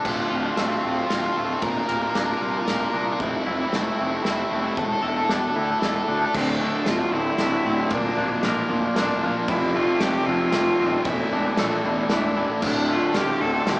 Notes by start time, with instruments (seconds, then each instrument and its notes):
Already playing: clean electric guitar D4 A4, ambient pad A5
0.04 picked electric bass D1, clean electric guitar D2, distorted electric guitar C4 F4, ambient pad C5 F5 D6, kick, crash
0.12 distorted electric guitar C4 F4
0.19 distorted electric guitar C4 F4
0.28 picked electric bass D1, distorted electric guitar C4 F4, clean electric guitar F4
0.34 distorted electric guitar C4 F4
0.42 distorted electric guitar C4 F4
0.50 distorted electric guitar C4 F4
0.57 picked electric bass D1, clean electric guitar A3, distorted electric guitar C4 F4, snare, ride
0.61 overdriven electric guitar C4
0.66 distorted electric guitar C4 F4
0.73 distorted electric guitar C4 F4
0.81 distorted electric guitar C4 F4, clean electric guitar C4
0.85 picked electric bass D1, distorted electric guitar C4
0.90 distorted electric guitar F4
0.95 distorted electric guitar C4 F4
1.03 distorted electric guitar C4 F4
1.09 picked electric bass D1, distorted electric guitar C4, clean electric guitar F4, snare, ride
1.14 distorted electric guitar F4
1.18 distorted electric guitar C4 F4
1.25 distorted electric guitar C4 F4
1.32 clean electric guitar A3, distorted electric guitar C4
1.37 picked electric bass D1, distorted electric guitar C4 F4
1.46 distorted electric guitar C4 F4
1.53 distorted electric guitar C4 F4
1.62 picked electric bass D1, clean electric guitar A#2, distorted electric guitar F4 A#4, ambient pad A#4, kick, ride
1.69 distorted electric guitar F4 A#4
1.77 distorted electric guitar F4 A#4
1.84 distorted electric guitar F4 A#4
1.88 picked electric bass D1, distorted electric guitar F4, clean electric guitar A#4, ride
1.94 distorted electric guitar A#4
1.99 distorted electric guitar F4 A#4
2.07 distorted electric guitar F4 A#4
2.14 picked electric bass D1, clean electric guitar D4, distorted electric guitar F4, snare, ride
2.19 distorted electric guitar F4 A#4
2.26 distorted electric guitar F4 A#4
2.34 distorted electric guitar F4 A#4
2.41 picked electric bass C2, clean electric guitar F4, distorted electric guitar F4 A#4
2.49 distorted electric guitar F4 A#4
2.57 distorted electric guitar F4 A#4
2.66 picked electric bass D1, distorted electric guitar F4 A#4, clean electric guitar A#4, snare, ride
2.73 distorted electric guitar F4 A#4
2.82 distorted electric guitar F4 A#4
2.89 distorted electric guitar F4 A#4
2.94 picked electric bass C2, clean electric guitar D4, distorted electric guitar A#4
2.98 distorted electric guitar F4
3.04 distorted electric guitar F4 A#4
3.12 distorted electric guitar F4 A#4
3.19 picked electric bass F1, clean electric guitar F2, distorted electric guitar C4 E4, ambient pad C5 E5 E6, kick
3.27 distorted electric guitar C4 E4
3.36 distorted electric guitar C4 E4
3.43 picked electric bass F1, distorted electric guitar C4 E4, clean electric guitar E4
3.51 distorted electric guitar C4 E4
3.59 distorted electric guitar C4 E4
3.67 distorted electric guitar C4 E4
3.73 picked electric bass F1, clean electric guitar A3, distorted electric guitar C4 E4, snare
3.83 distorted electric guitar C4 E4
3.90 distorted electric guitar C4 E4
3.98 picked electric bass F1, distorted electric guitar C4 E4, clean electric guitar C4
4.05 distorted electric guitar C4 E4
4.13 distorted electric guitar C4 E4
4.22 distorted electric guitar C4 E4, clean electric guitar E4, snare
4.26 picked electric bass F1, distorted electric guitar C4 E4
4.37 distorted electric guitar C4 E4
4.44 distorted electric guitar C4 E4
4.51 picked electric bass F1, clean electric guitar A3, distorted electric guitar C4 E4
4.60 distorted electric guitar C4 E4
4.68 distorted electric guitar C4 E4
4.76 picked electric bass E1, clean electric guitar A2, distorted electric guitar E4 A4, ambient pad D5 G5 A5, kick
4.85 distorted electric guitar E4 A4
4.93 distorted electric guitar E4 A4
5.00 picked electric bass E1, distorted electric guitar E4 A4, clean electric guitar A4
5.08 distorted electric guitar E4 A4
5.16 distorted electric guitar E4 A4
5.24 distorted electric guitar E4 A4
5.29 picked electric bass E1, clean electric guitar D4, distorted electric guitar E4 A4, snare
5.40 distorted electric guitar E4 A4
5.48 distorted electric guitar E4 A4
5.55 picked electric bass D2, distorted electric guitar E4 A4, clean electric guitar E4
5.63 distorted electric guitar E4 A4
5.71 distorted electric guitar E4 A4
5.79 picked electric bass E1, distorted electric guitar E4 A4, clean electric guitar A4, snare
5.86 distorted electric guitar E4 A4
5.95 distorted electric guitar E4 A4
6.02 distorted electric guitar E4 A4
6.08 picked electric bass D2, clean electric guitar D4, distorted electric guitar E4 A4
6.18 distorted electric guitar E4 A4
6.25 distorted electric guitar E4 A4
6.33 picked electric bass D1, distorted electric guitar D2 A2 D3, clean electric guitar D2, cello C4, ambient pad C5 D5 A5 D6, kick, crash
6.60 distorted electric guitar D2 A2 D3, clean electric guitar A3, cello D4
6.86 picked electric bass D1, distorted electric guitar D2 A2 D3, cello F4, snare, ride
7.11 picked electric bass D1, distorted electric guitar D2 A2 D3, clean electric guitar C4, cello E4
7.38 picked electric bass D1, distorted electric guitar D2 A2 D3, clean electric guitar A3, snare, ride
7.65 picked electric bass D1, distorted electric guitar D2 A2 D3, clean electric guitar C4
7.90 picked electric bass D1, clean electric guitar A#2, distorted electric guitar A#2 F3 A#3, cello D4, ambient pad A#4 A5, kick, ride
8.17 picked electric bass D1, distorted electric guitar A#2 F3 A#3, clean electric guitar D4
8.43 picked electric bass A1, distorted electric guitar A#2 F3 A#3, clean electric guitar A#4, snare, ride
8.69 picked electric bass D1, distorted electric guitar A#2 F3 A#3, clean electric guitar F4
8.96 picked electric bass D1, distorted electric guitar A#2 F3 A#3, clean electric guitar D4, cello D4, snare, ride
9.21 distorted electric guitar A#2 F3 A#3, clean electric guitar F4
9.48 picked electric bass F1, distorted electric guitar F2 C3 F3, clean electric guitar F2, cello E4, ambient pad C5 E6, kick, ride
9.75 distorted electric guitar F2 C3 F3, clean electric guitar A3, cello F4
10.00 picked electric bass F1, distorted electric guitar F2 C3 F3, cello G4, snare, ride
10.26 picked electric bass F1, distorted electric guitar F2 C3 F3, clean electric guitar C4, cello F4
10.52 picked electric bass F1, distorted electric guitar F2 C3 F3, clean electric guitar A3, snare, ride
10.79 picked electric bass D#1, distorted electric guitar F2 C3 F3, clean electric guitar C4
11.05 picked electric bass E1, distorted electric guitar A2 E3 A3, clean electric guitar A2, cello E4, ambient pad D5 G5 E6, kick, ride
11.31 picked electric bass E1, distorted electric guitar A2 E3 A3, clean electric guitar D4
11.57 picked electric bass A#1, distorted electric guitar A2 E3 A3, clean electric guitar A4, snare, ride
11.83 picked electric bass E1, distorted electric guitar A2 E3 A3, clean electric guitar E4
12.10 picked electric bass E1, distorted electric guitar A2 E3 A3, clean electric guitar D4, cello E4, snare, ride
12.35 distorted electric guitar A2 E3 A3, clean electric guitar E4
12.61 picked electric bass D1, distorted electric guitar D2 A2 D3, clean electric guitar D2, cello D4, ambient pad C5 D5 D6, kick, crash
12.88 distorted electric guitar D2 A2 D3, clean electric guitar A3, cello F4
13.14 picked electric bass D1, distorted electric guitar D2 A2 D3, clean electric guitar F4, cello G4, snare, ride
13.40 picked electric bass D1, distorted electric guitar D2 A2 D3, clean electric guitar C4, cello A4
13.66 picked electric bass D1, distorted electric guitar D2 A2 D3, clean electric guitar A3, cello G4, snare, ride